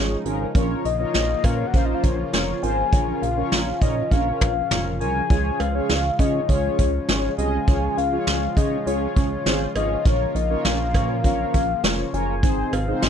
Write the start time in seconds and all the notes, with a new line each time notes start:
Already playing: G#1 C#3 F3 G#3 C#4 D#4 F4 G#4 C#5
0.25 G#1 C#4 F4 G#4 A#4, closed hi-hat
0.55 A#1 C#3 A#3 C#4 F4 A#4 C#5, kick, closed hi-hat
0.85 A#1 D#5, closed hi-hat
0.99 C#4 F4 A#4 C#5 D#5
1.14 A#1, snare, closed hi-hat
1.44 A#2 C#4 F4 A#4 C#5 F5, kick, closed hi-hat, cowbell
1.67 F#5
1.74 A#1 C#4 F4 A#4 C5 F5, kick, closed hi-hat
1.85 D#5
1.94 F5
2.03 A#1 C#5, kick, closed hi-hat
2.33 F1 C#4 F4 A#4 C#5, snare, closed hi-hat
2.63 G#1 C#4 F4 A#4 C5 G#5, closed hi-hat
2.93 A#1 C#4 F4 A#4 C#5, kick, closed hi-hat
3.22 A#1 F5, closed hi-hat
3.37 C#4 F4 A#4 C#5
3.52 A#1, snare, closed hi-hat
3.81 A#2 C#4 F4 A#4 C#5 D#5, kick, closed hi-hat
4.11 A#1 C#4 F4 A#4 C#5 F5, kick, closed hi-hat
4.41 A#1 F5, kick, closed hi-hat, mid tom, cowbell
4.71 F1 C#4 F4 A#4 C#5, snare, closed hi-hat, mid tom
5.01 C2 C#4 F4 A#4 C#5 G#5, closed hi-hat
5.30 C#2 G#3 C#4 F4 G#4 C#5, kick, closed hi-hat
5.60 C#2 F5, closed hi-hat, cowbell
5.75 C#4 F4 G#4 C#5
5.89 C#2, snare, closed hi-hat
6.19 C#3 C#4 F4 G#4 C#5 D#5, kick, closed hi-hat
6.49 C#2 C#4 F4 G#4 C#5, kick, closed hi-hat
6.78 C#2 C#5, kick, closed hi-hat
7.08 G#1 C#4 F4 G#4 C#5, snare, closed hi-hat
7.38 C2 C#4 F4 G#4 D#5 G#5, closed hi-hat
7.68 C#2 C#4 F4 G#4 C#5, kick, closed hi-hat
7.97 C#2 F5, closed hi-hat
8.12 C#4 F4 G#4 C#5
8.27 C#2, snare, closed hi-hat
8.57 C#3 C#4 F4 G#4 C#5 D#5, kick, closed hi-hat
8.86 C#2 C#4 F4 G#4 C#5, closed hi-hat
9.16 C#2 C#5, kick, closed hi-hat
9.46 G#1 C#4 F4 G#4 C5, snare, closed hi-hat
9.76 G#1 C#4 F4 G#4 C#5 D#5, closed hi-hat, cowbell
10.05 A#1 F3 A#3 C#4 F4 A#4 C#5, kick, closed hi-hat
10.35 A#1 D#5, closed hi-hat
10.50 C#4 F4 A#4 C#5
10.65 A#1 F5, snare, closed hi-hat
10.94 A#2 C#4 F4 A#4 C#5, kick, closed hi-hat, cowbell
11.24 A#1 C#4 F4 A#4 C#5 F5, kick, closed hi-hat
11.54 A#1, kick, closed hi-hat
11.84 F1 C#4 F4 A#4 C#5, snare, closed hi-hat
12.13 F#1 C#4 F4 A#4 C#5 G#5, closed hi-hat
12.43 G#1 C3 D#3 G#3 C4 D#4 G#4 C5, kick, closed hi-hat
12.73 G#1 F5, closed hi-hat, cowbell
12.88 C4 D#4 G#4 C5
13.02 G#1 D#5, snare, closed hi-hat